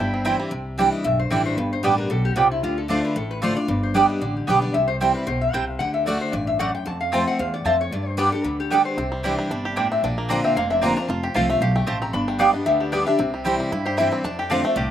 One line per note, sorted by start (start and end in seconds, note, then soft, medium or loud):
0.00 0.35 G1 medium
0.00 0.49 G2 loud
0.00 0.23 G3 medium
0.00 0.25 E4 medium
0.00 0.36 G5 loud
0.14 0.50 C4 medium
0.25 0.50 E3 medium
0.25 0.51 G3 medium
0.25 0.35 C4 medium
0.25 0.51 C4 medium
0.25 0.35 E4 loud
0.25 0.52 E4 medium
0.25 0.52 E4 loud
0.25 0.35 C5 loud
0.25 0.35 G5 medium
0.40 0.52 G3 medium
0.51 0.88 C2 medium
0.51 1.02 C3 medium
0.78 1.03 E3 medium
0.78 1.04 G3 medium
0.78 0.88 C4 medium
0.78 1.04 D4 medium
0.78 0.88 E4 medium
0.78 1.05 E4 loud
0.78 0.88 D5 medium
0.78 0.88 G5 medium
0.92 1.04 D#5 medium
1.04 1.27 B1 medium
1.04 1.55 G2 loud
1.04 1.19 E5 loud
1.19 1.31 C5 medium
1.30 1.54 A1 medium
1.30 1.56 E3 medium
1.30 1.57 G3 medium
1.30 1.41 C4 medium
1.30 1.57 D4 medium
1.30 1.41 E4 medium
1.30 1.57 E4 medium
1.30 1.45 A4 medium
1.30 1.41 D5 medium
1.30 1.41 G5 medium
1.46 1.57 C5 loud
1.57 1.75 G1 medium
1.57 2.08 G2 medium
1.57 1.71 B4 medium
1.73 1.84 C5 loud
1.83 2.06 A1 medium
1.83 2.09 G3 medium
1.83 2.09 B3 loud
1.83 1.94 B3 medium
1.83 2.09 D4 medium
1.83 1.94 G4 medium
1.83 2.10 G4 loud
1.83 1.98 B4 medium
1.83 1.94 D5 medium
1.83 1.94 G5 loud
1.98 2.10 A#4 medium
2.10 2.33 B1 loud
2.10 2.35 B2 medium
2.10 2.24 A4 medium
2.25 2.37 G4 medium
2.36 2.59 C2 medium
2.36 2.62 C3 loud
2.36 2.46 B3 medium
2.36 2.51 F4 medium
2.36 2.47 G4 medium
2.36 2.47 D5 medium
2.36 2.47 G5 medium
2.51 2.63 E4 medium
2.63 3.00 D2 loud
2.63 2.87 D3 medium
2.63 2.77 F4 medium
2.78 2.90 A4 medium
2.88 3.14 D3 medium
2.88 2.99 A3 medium
2.88 3.15 A3 medium
2.88 3.15 D4 loud
2.88 2.99 F4 medium
2.88 3.15 F4 medium
2.88 3.04 C5 loud
2.88 3.00 D5 medium
2.88 3.00 A5 medium
3.05 3.16 B4 loud
3.16 3.52 A1 medium
3.16 3.67 A2 loud
3.16 3.30 A4 medium
3.31 3.43 B4 medium
3.42 3.56 D3 medium
3.42 3.52 A3 medium
3.42 3.57 A3 medium
3.42 3.56 D4 medium
3.42 3.52 F4 medium
3.42 3.54 F4 loud
3.42 3.56 C5 medium
3.42 3.52 D5 medium
3.42 3.53 A5 medium
3.55 3.69 D4 soft
3.55 3.68 F4 medium
3.55 3.69 D5 loud
3.68 4.05 G1 medium
3.68 4.19 G2 medium
3.68 3.83 B4 medium
3.83 3.95 C5 medium
3.94 4.20 G3 medium
3.94 4.05 B3 medium
3.94 4.21 B3 medium
3.94 4.21 D4 medium
3.94 4.05 G4 medium
3.94 4.21 G4 medium
3.94 4.05 D5 medium
3.94 4.09 D5 medium
3.94 4.05 G5 medium
4.09 4.21 D#5 medium
4.21 4.44 A1 medium
4.21 4.72 D3 medium
4.21 4.36 D5 medium
4.37 4.48 G4 medium
4.47 4.71 B1 medium
4.47 4.73 G3 medium
4.47 4.58 B3 medium
4.47 4.74 B3 medium
4.47 4.74 D4 loud
4.47 4.58 G4 medium
4.47 4.75 G4 medium
4.47 4.62 B4 medium
4.47 4.58 D5 loud
4.47 4.58 G5 loud
4.62 4.73 D5 loud
4.74 5.11 C2 medium
4.74 5.25 C3 medium
4.74 4.88 E5 medium
4.88 4.95 C5 loud
5.00 5.26 E3 medium
5.00 5.27 G3 medium
5.00 5.11 C4 medium
5.00 5.27 C4 medium
5.00 5.11 E4 medium
5.00 5.27 E4 loud
5.00 5.11 C5 medium
5.00 5.11 G5 loud
5.14 5.27 B4 medium
5.27 5.50 B1 medium
5.27 5.53 B2 medium
5.27 5.41 C5 medium
5.41 5.53 E5 loud
5.53 5.77 C2 medium
5.53 5.80 C3 loud
5.53 5.64 C4 medium
5.53 5.64 E4 medium
5.53 5.64 C5 loud
5.53 5.67 G5 loud
5.53 5.64 G5 loud
5.67 5.79 F5 loud
5.79 6.17 D2 medium
5.79 6.06 D3 medium
5.79 5.93 F#5 loud
5.94 6.05 E5 medium
6.06 6.32 D3 medium
6.06 6.17 A3 medium
6.06 6.33 A3 loud
6.06 6.33 D4 loud
6.06 6.17 F#4 medium
6.06 6.33 F#4 loud
6.06 6.20 D5 medium
6.06 6.17 D5 medium
6.06 6.17 F#5 medium
6.21 6.33 C5 medium
6.32 6.70 A1 medium
6.32 6.59 G2 loud
6.32 6.47 D5 medium
6.47 6.59 E5 medium
6.59 6.85 F#2 loud
6.59 6.69 A3 medium
6.59 6.70 F#4 medium
6.59 6.70 D5 loud
6.59 6.74 F#5 loud
6.59 6.70 F#5 loud
6.75 6.86 G5 loud
6.86 7.37 F2 medium
6.86 7.23 F2 medium
6.86 7.01 A5 loud
7.01 7.13 F5 medium
7.12 7.38 F3 medium
7.12 7.39 A3 medium
7.12 7.22 C4 medium
7.12 7.39 C4 loud
7.12 7.22 F4 medium
7.12 7.39 F4 loud
7.12 7.23 C5 medium
7.12 7.27 G5 loud
7.12 7.23 A5 loud
7.28 7.39 F#5 loud
7.39 7.62 E2 medium
7.39 7.65 E2 loud
7.39 7.54 F5 medium
7.54 7.66 D5 medium
7.65 7.88 F2 medium
7.65 7.91 F2 medium
7.65 7.75 C4 medium
7.65 7.75 F4 medium
7.65 7.75 C5 medium
7.65 7.80 E5 loud
7.65 7.75 A5 loud
7.81 7.92 C#5 medium
7.91 8.28 G2 medium
7.91 8.43 G2 medium
7.91 8.08 D5 medium
8.08 8.18 C5 medium
8.17 8.32 G3 medium
8.17 8.28 B3 medium
8.17 8.32 B3 medium
8.17 8.32 D4 medium
8.17 8.28 G4 medium
8.17 8.31 G4 loud
8.17 8.32 B4 medium
8.17 8.28 D5 medium
8.17 8.28 G5 loud
8.32 8.46 D4 soft
8.32 8.44 G4 medium
8.32 8.45 A4 medium
8.44 8.81 D2 medium
8.44 8.95 D3 medium
8.44 8.59 B4 loud
8.60 8.71 G4 medium
8.70 8.97 G3 medium
8.70 8.81 B3 medium
8.70 8.97 B3 medium
8.70 8.97 D4 loud
8.70 8.81 G4 medium
8.70 8.98 G4 medium
8.70 8.85 A4 medium
8.70 8.81 D5 medium
8.70 8.81 G5 loud
8.85 9.46 C5 medium
8.97 9.33 C2 medium
8.97 9.48 C3 medium
8.97 9.54 C4 medium
9.12 9.37 G3 medium
9.23 9.49 E3 medium
9.23 9.50 G3 medium
9.23 9.34 C4 medium
9.23 9.50 D4 loud
9.23 9.34 E4 medium
9.23 9.50 E4 medium
9.23 9.62 G4 medium
9.23 9.34 D5 medium
9.23 9.34 G5 medium
9.39 9.75 G3 medium
9.50 9.87 G1 medium
9.50 9.76 C3 medium
9.50 9.76 D4 medium
9.65 10.01 G4 medium
9.76 10.02 A2 medium
9.76 9.86 C4 medium
9.76 10.03 D4 medium
9.76 9.86 E4 medium
9.76 9.87 D5 medium
9.76 9.87 G5 medium
9.92 10.07 C4 medium
9.92 10.03 E5 medium
10.03 10.39 A#1 medium
10.03 10.54 A#2 medium
10.03 10.29 D4 medium
10.03 10.28 D5 medium
10.18 10.54 A#3 medium
10.29 10.55 D3 loud
10.29 10.55 A#3 loud
10.29 10.39 C4 medium
10.29 10.56 C4 loud
10.29 10.68 D4 medium
10.29 10.39 F4 medium
10.29 10.56 F4 loud
10.29 10.39 D5 loud
10.29 10.44 G5 loud
10.29 10.39 A#5 medium
10.44 10.80 C4 medium
10.44 10.56 E5 medium
10.56 10.92 F1 medium
10.56 11.07 F2 loud
10.56 10.82 A#3 medium
10.56 10.70 F5 loud
10.70 10.96 D4 medium
10.70 10.82 E5 loud
10.81 10.96 D3 medium
10.81 11.09 A#3 medium
10.81 10.97 A#3 medium
10.81 10.92 C4 medium
10.81 10.97 C4 medium
10.81 10.92 F4 medium
10.81 10.96 F4 loud
10.81 10.92 D5 loud
10.81 10.96 G5 loud
10.81 10.92 A#5 medium
10.96 11.10 C4 soft
10.96 11.09 D4 medium
10.96 11.09 F4 medium
10.96 11.08 A#5 loud
11.08 11.27 F1 medium
11.08 11.59 F2 medium
11.08 11.34 F4 medium
11.08 11.22 A5 medium
11.23 11.59 G4 medium
11.23 11.35 G5 loud
11.34 11.58 C2 loud
11.34 11.48 F3 medium
11.34 11.49 A3 medium
11.34 11.45 C4 medium
11.34 11.49 C4 medium
11.34 11.45 F4 medium
11.34 11.73 F4 medium
11.34 11.48 F4 medium
11.34 11.45 C5 medium
11.34 11.49 F5 medium
11.34 11.45 A5 loud
11.50 11.75 A3 medium
11.50 11.62 C4 soft
11.50 11.61 F4 medium
11.50 11.61 E5 medium
11.61 11.83 B1 loud
11.61 11.87 E2 medium
11.61 11.86 G4 medium
11.61 11.75 F5 medium
11.75 12.12 A3 medium
11.75 11.87 G5 medium
11.87 12.10 A1 medium
11.87 12.13 F2 loud
11.87 11.97 C4 medium
11.87 11.97 F4 medium
11.87 12.14 G4 medium
11.87 11.97 C5 loud
11.87 11.97 A5 medium
11.87 12.01 A5 medium
12.02 12.14 C4 medium
12.02 12.13 A#5 loud
12.13 12.50 G1 medium
12.13 12.64 G2 medium
12.13 12.39 D4 medium
12.13 12.27 B5 loud
12.28 12.64 G3 medium
12.28 12.39 G5 loud
12.39 12.53 G3 medium
12.39 12.49 B3 medium
12.39 12.54 B3 medium
12.39 12.78 D4 medium
12.39 12.54 D4 medium
12.39 12.49 G4 medium
12.39 12.52 G4 loud
12.39 12.49 D5 medium
12.39 12.53 F5 loud
12.39 12.50 G5 medium
12.53 12.90 B3 medium
12.53 12.66 D4 soft
12.53 12.65 G4 medium
12.53 12.66 D#5 medium
12.66 13.02 D2 medium
12.66 13.16 D3 loud
12.66 12.92 G3 medium
12.66 12.80 E5 loud
12.80 13.06 D4 medium
12.80 12.92 G4 medium
12.92 13.06 G3 medium
12.92 13.19 G3 medium
12.92 13.02 B3 medium
12.92 13.06 B3 medium
12.92 13.07 D4 medium
12.92 13.02 G4 medium
12.92 13.05 G4 loud
12.92 13.06 B4 medium
12.92 13.02 D5 medium
12.92 13.02 G5 medium
13.06 13.19 D4 medium
13.06 13.18 G4 medium
13.06 13.31 E5 loud
13.19 13.55 C2 medium
13.19 13.69 C3 loud
13.19 14.12 C4 medium
13.34 13.59 G3 medium
13.44 13.70 E3 medium
13.44 13.70 G3 loud
13.44 13.54 C4 medium
13.44 13.71 C4 loud
13.44 13.55 E4 medium
13.44 13.71 E4 loud
13.44 13.83 G4 medium
13.44 13.55 C5 medium
13.44 13.55 G5 loud
13.60 13.96 G3 medium
13.72 14.08 G2 medium
13.72 14.22 G2 medium
13.72 13.97 E4 medium
13.86 14.22 G4 medium
13.86 13.97 C5 loud
13.97 14.23 E3 medium
13.97 14.23 G3 medium
13.97 14.07 C4 medium
13.97 14.24 C4 medium
13.97 14.07 E4 medium
13.97 14.24 E4 medium
13.97 14.24 E4 loud
13.97 14.07 C5 medium
13.97 14.12 E5 loud
13.97 14.08 G5 loud
14.12 14.24 C4 medium
14.12 14.24 G5 loud
14.24 14.60 F2 loud
14.24 14.75 F2 loud
14.24 14.50 D4 medium
14.24 14.38 A5 loud
14.39 14.75 G4 medium
14.39 14.50 G5 loud
14.50 14.64 D3 medium
14.50 14.64 A3 loud
14.50 14.60 C4 medium
14.50 14.64 C4 loud
14.50 14.88 D4 soft
14.50 14.60 F4 medium
14.50 14.62 F4 medium
14.50 14.60 D5 loud
14.50 14.64 F5 medium
14.50 14.60 A5 medium
14.64 14.90 A3 medium
14.64 14.77 C4 soft
14.64 14.76 F4 medium
14.64 14.76 E5 medium
14.76 14.91 C2 loud
14.76 14.91 A2 loud
14.76 14.91 G4 medium
14.76 14.90 D5 medium